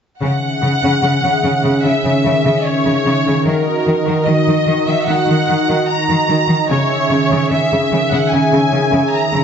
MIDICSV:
0, 0, Header, 1, 4, 480
1, 0, Start_track
1, 0, Tempo, 810811
1, 127, Time_signature, 4, 2, 24, 8
1, 5588, End_track
2, 0, Start_track
2, 0, Title_t, "Violin section"
2, 0, Program_c, 0, 48
2, 127, Note_on_c, 0, 78, 59
2, 1063, Note_off_c, 0, 78, 0
2, 1085, Note_on_c, 0, 76, 41
2, 1566, Note_off_c, 0, 76, 0
2, 1566, Note_on_c, 0, 73, 46
2, 2046, Note_on_c, 0, 70, 45
2, 2047, Note_off_c, 0, 73, 0
2, 2517, Note_off_c, 0, 70, 0
2, 2526, Note_on_c, 0, 75, 49
2, 2886, Note_off_c, 0, 75, 0
2, 2891, Note_on_c, 0, 76, 45
2, 3004, Note_on_c, 0, 78, 54
2, 3009, Note_off_c, 0, 76, 0
2, 3485, Note_off_c, 0, 78, 0
2, 3485, Note_on_c, 0, 82, 53
2, 3956, Note_off_c, 0, 82, 0
2, 3963, Note_on_c, 0, 73, 49
2, 4435, Note_off_c, 0, 73, 0
2, 4450, Note_on_c, 0, 76, 49
2, 4801, Note_off_c, 0, 76, 0
2, 4810, Note_on_c, 0, 78, 46
2, 4922, Note_on_c, 0, 80, 51
2, 4928, Note_off_c, 0, 78, 0
2, 5404, Note_on_c, 0, 82, 54
2, 5405, Note_off_c, 0, 80, 0
2, 5588, Note_off_c, 0, 82, 0
2, 5588, End_track
3, 0, Start_track
3, 0, Title_t, "Analog synth pad"
3, 0, Program_c, 1, 89
3, 125, Note_on_c, 1, 61, 52
3, 125, Note_on_c, 1, 68, 53
3, 126, Note_on_c, 1, 51, 57
3, 126, Note_on_c, 1, 76, 54
3, 2022, Note_off_c, 1, 61, 0
3, 2022, Note_off_c, 1, 68, 0
3, 2023, Note_off_c, 1, 76, 0
3, 2040, Note_on_c, 1, 75, 53
3, 2041, Note_on_c, 1, 63, 53
3, 2044, Note_on_c, 1, 66, 53
3, 3943, Note_off_c, 1, 51, 0
3, 3963, Note_off_c, 1, 75, 0
3, 3964, Note_off_c, 1, 63, 0
3, 3964, Note_on_c, 1, 68, 57
3, 3965, Note_off_c, 1, 66, 0
3, 3966, Note_on_c, 1, 51, 57
3, 3966, Note_on_c, 1, 76, 61
3, 3968, Note_on_c, 1, 61, 56
3, 5588, Note_off_c, 1, 51, 0
3, 5588, Note_off_c, 1, 61, 0
3, 5588, Note_off_c, 1, 68, 0
3, 5588, Note_off_c, 1, 76, 0
3, 5588, End_track
4, 0, Start_track
4, 0, Title_t, "Cello section"
4, 0, Program_c, 2, 48
4, 131, Note_on_c, 2, 49, 37
4, 178, Note_off_c, 2, 49, 0
4, 370, Note_on_c, 2, 49, 30
4, 417, Note_off_c, 2, 49, 0
4, 490, Note_on_c, 2, 49, 39
4, 537, Note_off_c, 2, 49, 0
4, 609, Note_on_c, 2, 49, 25
4, 656, Note_off_c, 2, 49, 0
4, 726, Note_on_c, 2, 49, 29
4, 773, Note_off_c, 2, 49, 0
4, 848, Note_on_c, 2, 49, 40
4, 895, Note_off_c, 2, 49, 0
4, 971, Note_on_c, 2, 49, 26
4, 1018, Note_off_c, 2, 49, 0
4, 1090, Note_on_c, 2, 49, 37
4, 1137, Note_off_c, 2, 49, 0
4, 1211, Note_on_c, 2, 49, 29
4, 1258, Note_off_c, 2, 49, 0
4, 1330, Note_on_c, 2, 49, 33
4, 1378, Note_off_c, 2, 49, 0
4, 1453, Note_on_c, 2, 49, 40
4, 1499, Note_off_c, 2, 49, 0
4, 1692, Note_on_c, 2, 49, 28
4, 1739, Note_off_c, 2, 49, 0
4, 1811, Note_on_c, 2, 49, 36
4, 1858, Note_off_c, 2, 49, 0
4, 1931, Note_on_c, 2, 49, 25
4, 1978, Note_off_c, 2, 49, 0
4, 2051, Note_on_c, 2, 51, 35
4, 2098, Note_off_c, 2, 51, 0
4, 2287, Note_on_c, 2, 51, 29
4, 2334, Note_off_c, 2, 51, 0
4, 2406, Note_on_c, 2, 51, 42
4, 2454, Note_off_c, 2, 51, 0
4, 2527, Note_on_c, 2, 51, 28
4, 2574, Note_off_c, 2, 51, 0
4, 2645, Note_on_c, 2, 51, 30
4, 2692, Note_off_c, 2, 51, 0
4, 2763, Note_on_c, 2, 51, 44
4, 2810, Note_off_c, 2, 51, 0
4, 2883, Note_on_c, 2, 51, 27
4, 2930, Note_off_c, 2, 51, 0
4, 3002, Note_on_c, 2, 51, 37
4, 3050, Note_off_c, 2, 51, 0
4, 3122, Note_on_c, 2, 51, 28
4, 3169, Note_off_c, 2, 51, 0
4, 3243, Note_on_c, 2, 51, 32
4, 3290, Note_off_c, 2, 51, 0
4, 3364, Note_on_c, 2, 51, 41
4, 3412, Note_off_c, 2, 51, 0
4, 3608, Note_on_c, 2, 51, 30
4, 3656, Note_off_c, 2, 51, 0
4, 3725, Note_on_c, 2, 51, 40
4, 3773, Note_off_c, 2, 51, 0
4, 3842, Note_on_c, 2, 51, 27
4, 3890, Note_off_c, 2, 51, 0
4, 3965, Note_on_c, 2, 49, 40
4, 4013, Note_off_c, 2, 49, 0
4, 4204, Note_on_c, 2, 49, 30
4, 4251, Note_off_c, 2, 49, 0
4, 4325, Note_on_c, 2, 49, 39
4, 4373, Note_off_c, 2, 49, 0
4, 4444, Note_on_c, 2, 49, 29
4, 4492, Note_off_c, 2, 49, 0
4, 4566, Note_on_c, 2, 49, 30
4, 4613, Note_off_c, 2, 49, 0
4, 4685, Note_on_c, 2, 49, 41
4, 4733, Note_off_c, 2, 49, 0
4, 4804, Note_on_c, 2, 49, 29
4, 4852, Note_off_c, 2, 49, 0
4, 4921, Note_on_c, 2, 49, 39
4, 4968, Note_off_c, 2, 49, 0
4, 5045, Note_on_c, 2, 49, 31
4, 5093, Note_off_c, 2, 49, 0
4, 5163, Note_on_c, 2, 49, 33
4, 5211, Note_off_c, 2, 49, 0
4, 5283, Note_on_c, 2, 49, 43
4, 5330, Note_off_c, 2, 49, 0
4, 5525, Note_on_c, 2, 49, 30
4, 5572, Note_off_c, 2, 49, 0
4, 5588, End_track
0, 0, End_of_file